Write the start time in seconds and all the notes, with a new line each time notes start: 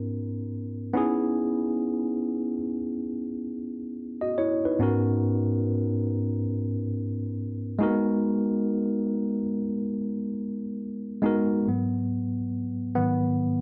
0.94 B3 C#4 D#4 E4 G#4
4.21 F#4 D#5
4.38 E4 C#5
4.65 D#4 B4
4.79 G#2 B3 C#4 D#4 F#4 A#4
7.79 G#3 A#3 D#4 F#4
7.83 B3 A#4
11.22 G#3 B3 D#4 F#4 A#4
11.67 G#2 F#3 B3
12.95 G#2 D#3 F#3 B3